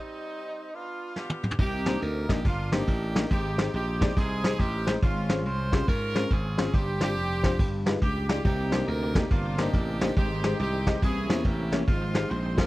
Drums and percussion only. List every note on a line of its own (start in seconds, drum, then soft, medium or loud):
1.16 snare medium
1.30 high tom medium
1.43 mid tom medium
1.51 floor tom medium
1.59 kick loud
1.59 crash medium
1.86 snare loud
1.86 ride medium
2.02 ride medium
2.29 kick medium
2.29 snare loud
2.29 ride medium
2.45 kick loud
2.45 ride medium
2.72 snare loud
2.72 ride soft
2.87 kick medium
2.87 ride medium
3.15 snare loud
3.15 ride medium
3.31 kick loud
3.31 ride medium
3.58 snare loud
3.58 ride medium
3.74 ride medium
4.01 kick medium
4.01 snare loud
4.01 ride medium
4.17 kick loud
4.17 ride medium
4.44 snare loud
4.44 ride medium
4.59 kick medium
4.59 ride medium
4.87 snare loud
4.87 ride medium
5.02 kick loud
5.02 ride medium
5.29 snare loud
5.29 ride medium
5.45 ride medium
5.72 kick medium
5.72 snare loud
5.72 ride medium
5.88 kick loud
5.88 ride medium
6.15 snare loud
6.15 ride medium
6.30 kick medium
6.30 ride medium
6.58 snare loud
6.58 ride medium
6.74 kick loud
6.74 ride medium
7.01 snare loud
7.01 ride medium
7.16 ride medium
7.44 kick medium
7.44 snare loud
7.44 ride medium
7.59 kick loud
7.59 ride loud
7.86 snare loud
7.86 ride medium
8.01 kick loud
8.01 ride medium
8.29 snare loud
8.29 ride medium
8.45 kick loud
8.45 ride medium
8.72 snare loud
8.72 ride medium
8.88 ride medium
9.15 kick medium
9.15 snare loud
9.15 ride medium
9.31 kick loud
9.31 ride medium
9.58 snare loud
9.58 ride medium
9.73 kick medium
9.73 ride medium
10.01 snare loud
10.01 ride medium
10.17 kick loud
10.17 ride medium
10.43 snare loud
10.43 ride medium
10.59 ride medium
10.87 kick medium
10.87 snare loud
10.87 ride medium
11.02 kick loud
11.02 ride loud
11.29 snare loud
11.29 ride medium
11.44 kick medium
11.44 ride medium
11.72 snare loud
11.72 ride medium
11.88 kick loud
11.88 ride medium
12.14 snare loud
12.14 ride medium
12.30 ride medium
12.58 kick medium
12.58 snare loud
12.58 ride medium